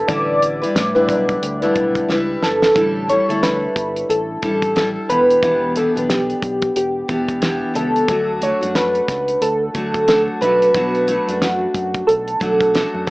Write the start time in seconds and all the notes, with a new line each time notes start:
0.08 A1 A2 D3 G3 D4 E4 B4 D5, kick, closed hi-hat
0.43 closed hi-hat
0.62 G3 D4 E4 B4, closed hi-hat
0.75 A2, snare, closed hi-hat
0.95 A2 D3 G3 D4 E4 B4, closed hi-hat
1.09 B1, kick, closed hi-hat
1.29 kick, closed hi-hat
1.42 D2, closed hi-hat
1.62 A2 D3 G3 D4 E4 B4, closed hi-hat
1.76 B1, kick, closed hi-hat
1.95 kick, closed hi-hat
2.08 C#2 G3 D4 E4 B4, snare
2.42 G1 A4, snare
2.62 snare
2.75 A1 A2 D3 G3 D4 E4 A4, kick, closed hi-hat
3.09 G3 D4 E4 A4 C#5, closed hi-hat
3.29 D2 G3 D4 E4 A4, closed hi-hat
3.43 B4, snare, closed hi-hat
3.76 G1, kick, closed hi-hat
3.96 closed hi-hat
4.09 A1 A4, closed hi-hat
4.42 A1 G3 D4 E4 A4, kick, closed hi-hat
4.62 kick, closed hi-hat
4.75 G3 D4 E4 A4, snare, closed hi-hat
5.09 E1 E3 B3 D4 G4 B4, closed hi-hat
5.30 closed hi-hat
5.42 E1 E3 B3 D4 G4, kick, closed hi-hat
5.75 E3 B3 D4 G4 A4, closed hi-hat
5.95 B1 B3 D4 G4, closed hi-hat
6.09 G4, snare, closed hi-hat
6.30 closed hi-hat
6.42 B1, kick, closed hi-hat
6.62 kick, closed hi-hat
6.76 E1 G4, closed hi-hat
7.08 E1 E3 B3 D4 G4, kick, closed hi-hat
7.28 kick, closed hi-hat
7.42 E3 B3 D4 G4, snare, closed hi-hat
7.74 C#2 E3 B3 D4 G4 A4, closed hi-hat
7.96 closed hi-hat
8.08 D2 D3 F#3 A3 D4 F#4, kick, closed hi-hat
8.41 F#3 A3 D4 F#4 C#5, closed hi-hat
8.61 F#2 A3 D4 F#4, closed hi-hat
8.75 B4, snare, closed hi-hat
8.95 closed hi-hat
9.08 C#2, kick, snare, closed hi-hat
9.28 closed hi-hat
9.41 D2 A4, closed hi-hat
9.74 D2 F#3 A3 D4 F#4, kick, closed hi-hat
9.94 kick, closed hi-hat
10.07 F#3 A3 D4 F#4 A4, snare, closed hi-hat
10.41 B1 F#3 A3 D4 F#4 B4, closed hi-hat
10.62 closed hi-hat
10.74 B1 B2 F#3 A3 D4 F#4, kick, closed hi-hat
10.95 closed hi-hat
11.07 F#3 A3 D4 F#4, closed hi-hat
11.27 F#2 A3 D4 F#4, closed hi-hat
11.41 F#4, snare, closed hi-hat
11.74 F#2, kick, closed hi-hat
11.94 kick, closed hi-hat
12.07 B1 A4, closed hi-hat
12.28 closed hi-hat
12.40 B1 F#3 A3 D4 F#4, kick, closed hi-hat
12.61 kick, closed hi-hat
12.74 F#3 A3 D4 F#4, snare, closed hi-hat
12.94 F#2
13.07 F#3 A4